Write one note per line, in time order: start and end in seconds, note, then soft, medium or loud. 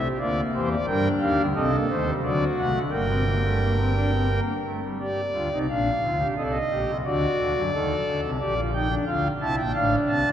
0.03 0.18 G4 medium
0.19 0.41 D2 medium
0.19 0.41 D3 medium
0.19 0.78 A#3 medium
0.19 0.41 F4 medium
0.19 0.41 D5 medium
0.54 0.75 E2 medium
0.54 0.75 E3 medium
0.54 0.75 G4 medium
0.54 0.69 C5 medium
0.71 0.86 D5 medium
0.86 1.08 G2 medium
0.86 1.08 G3 medium
0.86 1.45 D4 medium
0.86 1.08 A#4 medium
0.86 1.08 G5 medium
1.20 1.36 D#2 medium
1.20 1.36 D#3 medium
1.20 1.42 G4 medium
1.20 1.42 F5 medium
1.38 1.53 D2 medium
1.38 1.53 D3 medium
1.55 1.76 C2 medium
1.55 1.76 C3 medium
1.55 1.70 C4 medium
1.55 2.13 A4 medium
1.55 1.76 D#5 medium
1.73 1.87 A#3 medium
1.89 2.10 D#2 medium
1.89 2.10 D#3 medium
1.89 2.04 A3 medium
1.89 2.10 C5 medium
2.06 2.21 G3 medium
2.23 2.44 D2 medium
2.23 2.44 D3 medium
2.23 2.44 F#3 medium
2.23 2.82 F#4 medium
2.23 2.44 D5 medium
2.58 2.73 C2 medium
2.58 2.73 C3 medium
2.58 2.79 A3 medium
2.58 2.79 F#5 medium
2.75 2.90 D2 medium
2.75 2.90 D3 medium
2.90 4.40 G1 medium
2.90 4.40 G2 medium
2.90 3.06 A#3 medium
2.90 4.40 A#4 medium
2.90 4.40 G5 medium
3.08 3.24 C4 medium
3.26 3.41 A#3 medium
3.44 3.59 A3 medium
3.61 3.76 A#3 medium
3.78 3.93 C4 medium
3.96 4.11 D4 medium
4.13 4.28 C4 medium
4.32 4.53 A#3 medium
4.65 4.80 A3 medium
4.82 4.97 G3 medium
4.99 5.21 G4 medium
4.99 5.59 D5 medium
5.34 5.49 D2 medium
5.34 5.48 D3 medium
5.34 5.49 F4 medium
5.52 5.66 C2 medium
5.52 5.66 C3 medium
5.52 5.66 D#4 medium
5.69 5.90 A#1 medium
5.69 5.90 A#2 medium
5.69 5.90 D4 medium
5.69 6.27 F5 medium
6.03 6.24 D2 medium
6.03 6.24 D3 medium
6.03 6.18 F4 medium
6.19 6.34 G4 medium
6.36 6.58 C2 medium
6.36 6.57 C3 medium
6.36 6.58 A4 medium
6.36 6.43 D#5 medium
6.45 6.51 D5 soft
6.51 6.97 D#5 medium
6.70 6.85 A#1 medium
6.70 6.85 A#2 medium
6.70 6.91 G4 medium
6.88 7.02 C2 medium
6.88 7.02 C3 medium
7.04 7.25 D2 medium
7.04 7.26 D3 medium
7.04 7.63 F#4 medium
7.04 8.21 D5 medium
7.39 7.53 D2 medium
7.39 7.53 D3 medium
7.56 7.70 F#2 medium
7.56 7.70 F#3 medium
7.72 7.93 D#2 medium
7.72 7.93 D#3 medium
7.72 8.30 A4 medium
8.06 8.20 D2 medium
8.06 8.20 D3 medium
8.23 8.37 C2 medium
8.23 8.37 C3 medium
8.39 8.97 A#1 medium
8.39 8.97 A#2 medium
8.39 8.54 G4 medium
8.39 8.60 D5 medium
8.56 8.70 F4 medium
8.74 8.88 D#4 medium
8.74 8.94 G5 medium
8.89 9.04 D4 medium
9.07 9.28 D2 medium
9.07 9.28 D3 medium
9.07 9.28 F4 medium
9.07 9.28 F5 medium
9.41 9.55 C2 medium
9.41 9.55 C3 medium
9.41 9.61 E4 medium
9.41 9.55 A5 medium
9.57 9.72 A#1 medium
9.57 9.72 A#2 medium
9.57 9.72 G5 medium
9.75 9.96 A1 medium
9.75 9.96 A2 medium
9.75 10.32 D4 medium
9.75 9.95 F5 medium
10.08 10.23 C2 medium
10.08 10.23 C3 medium
10.08 10.29 A5 medium
10.25 10.32 D2 medium
10.25 10.32 D3 medium